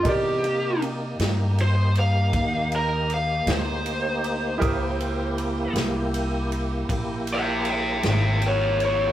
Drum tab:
RD |xxxxxxxxxxxx|xxxxxxxxxxxx|
SD |---o-----o--|---o-----o--|
BD |o-----o-----|o-----o-----|